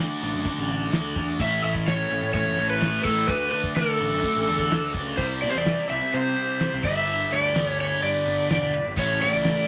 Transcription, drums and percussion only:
0.21 closed hi-hat medium
0.45 kick medium
0.45 closed hi-hat medium
0.45 tambourine medium
0.69 closed hi-hat medium
0.69 tambourine medium
0.92 snare loud
0.92 closed hi-hat medium
0.92 tambourine medium
1.16 kick medium
1.16 closed hi-hat medium
1.16 tambourine medium
1.39 kick loud
1.39 closed hi-hat medium
1.63 closed hi-hat medium
1.63 tambourine medium
1.75 kick medium
1.86 snare loud
1.86 closed hi-hat medium
1.86 tambourine medium
2.10 closed hi-hat medium
2.33 kick medium
2.33 closed hi-hat medium
2.33 tambourine medium
2.57 closed hi-hat medium
2.57 tambourine medium
2.80 snare loud
2.80 closed hi-hat medium
2.80 tambourine loud
3.04 kick medium
3.04 closed hi-hat medium
3.04 tambourine medium
3.28 kick loud
3.28 closed hi-hat medium
3.28 tambourine soft
3.52 closed hi-hat medium
3.52 tambourine medium
3.64 kick medium
3.75 snare loud
3.75 closed hi-hat medium
3.75 tambourine medium
3.99 closed hi-hat medium
3.99 tambourine soft
4.23 kick medium
4.23 closed hi-hat medium
4.23 tambourine medium
4.47 closed hi-hat medium
4.47 tambourine medium
4.59 kick medium
4.71 snare loud
4.71 closed hi-hat medium
4.71 tambourine medium
4.94 kick medium
4.94 closed hi-hat medium
4.94 tambourine medium
5.18 kick loud
5.18 crash loud
5.18 tambourine medium
5.42 ride medium
5.42 tambourine soft
5.65 snare loud
5.65 ride medium
5.65 tambourine medium
5.89 ride medium
5.89 tambourine medium
6.12 ride medium
6.12 tambourine soft
6.36 ride medium
6.36 tambourine medium
6.60 snare loud
6.60 ride medium
6.60 tambourine medium
6.84 kick loud
6.84 ride medium
6.84 tambourine medium
7.07 ride loud
7.07 tambourine medium
7.31 ride medium
7.31 tambourine soft
7.54 snare loud
7.54 ride medium
7.54 tambourine medium
7.78 ride medium
7.78 tambourine medium
8.02 ride medium
8.02 tambourine soft
8.25 ride medium
8.25 tambourine medium
8.49 snare loud
8.49 ride medium
8.49 tambourine medium
8.74 ride medium
8.74 tambourine medium
8.97 kick loud
8.97 ride medium
8.97 tambourine medium
9.21 ride medium
9.21 tambourine soft
9.44 snare loud
9.44 ride medium
9.44 tambourine medium

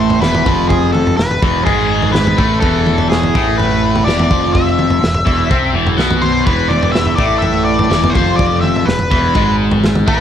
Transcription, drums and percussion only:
0.10 floor tom medium
0.22 snare medium
0.22 mid tom medium
0.35 floor tom medium
0.35 mid tom medium
0.46 kick medium
0.46 mid tom medium
0.70 kick medium
0.70 floor tom medium
0.95 mid tom medium
1.07 floor tom medium
1.19 snare medium
1.31 floor tom medium
1.43 kick loud
1.67 kick medium
1.67 floor tom medium
2.02 floor tom medium
2.14 snare medium
2.14 mid tom medium
2.27 floor tom medium
2.27 mid tom medium
2.38 kick loud
2.38 mid tom medium
2.62 kick loud
2.62 floor tom medium
2.87 mid tom medium
2.98 floor tom medium
3.12 snare medium
3.23 floor tom medium
3.35 kick loud
3.60 floor tom medium
3.96 floor tom medium
4.08 snare medium
4.08 mid tom medium
4.19 floor tom medium
4.19 mid tom medium
4.31 kick loud
4.31 mid tom medium
4.55 kick medium
4.55 floor tom medium
4.79 mid tom medium
4.90 floor tom medium
5.04 snare medium
5.14 floor tom medium
5.27 kick loud
5.51 kick loud
5.51 floor tom medium
5.87 floor tom medium
5.98 snare medium
5.98 mid tom medium
6.11 floor tom medium
6.11 mid tom medium
6.23 mid tom medium
6.47 kick medium
6.47 floor tom medium
6.71 mid tom medium
6.83 floor tom medium
6.95 snare medium
7.06 floor tom medium
7.18 kick loud
7.42 floor tom medium
7.79 floor tom medium
7.91 snare medium
7.91 mid tom medium
8.04 floor tom medium
8.04 mid tom medium
8.15 kick loud
8.15 mid tom medium
8.39 kick loud
8.39 floor tom medium
8.63 mid tom medium
8.76 floor tom medium
8.89 snare medium
8.99 floor tom medium
9.11 kick loud
9.35 kick loud
9.35 floor tom medium
9.71 floor tom medium
9.84 snare medium
9.84 mid tom medium
9.95 floor tom medium
9.95 mid tom medium
10.08 kick loud
10.08 mid tom medium

